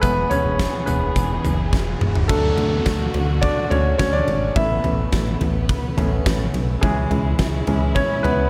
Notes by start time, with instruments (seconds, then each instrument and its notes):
Already playing: riser
0.02 fm bass E1, grand piano E3 G#3 B3 B4, string section E3 B3 G#4, kick, closed hi-hat
0.30 grand piano C#4 C#5, closed hi-hat, floor tom
0.45 fm bass E1
0.59 kick, snare, closed hi-hat
0.86 fm bass E1, grand piano B3 B4, closed hi-hat, floor tom
1.16 fm bass E1, kick, closed hi-hat
1.45 fm bass F#1, closed hi-hat, floor tom
1.73 fm bass E1, kick, snare
2.01 fm bass E1, mid tom
2.15 floor tom
2.28 fm bass D2, string section D3 A3 F#4, grand piano F#3 A3 D4 A4, kick, crash, downlifter
2.58 fm bass D2, floor tom, ride
2.86 fm bass D2, kick, snare, ride
3.14 fm bass D2, floor tom, ride
3.41 grand piano D4 D5, kick, ride
3.70 fm bass D2, grand piano C#4 C#5, floor tom, ride
3.98 fm bass D2, grand piano C#4 C#5, kick, snare, ride
4.13 grand piano D4 D5
4.28 fm bass G#1, ride
4.56 fm bass A1, string section C#3 B3, grand piano A3 B3 C#4 E4 E5, kick, ride
4.84 fm bass A1, floor tom, ride
5.12 fm bass A1, kick, snare, ride
5.41 fm bass A1, floor tom, ride
5.69 kick, ride
5.97 fm bass A1, grand piano A3 B3 C#4, floor tom, ride
6.26 fm bass A1, kick, snare, ride
6.54 fm bass B1, ride
6.81 fm bass C#2, grand piano E3 G#3 C#4 G#4, string section G#3 E4, kick, ride
7.11 fm bass C#2, floor tom, ride
7.39 fm bass C#2, kick, snare, ride
7.67 fm bass C#2, grand piano E3 G#3 C#4, floor tom, ride
7.95 grand piano C#4 C#5, kick, ride
8.23 fm bass C#2, grand piano B3 B4, floor tom, ride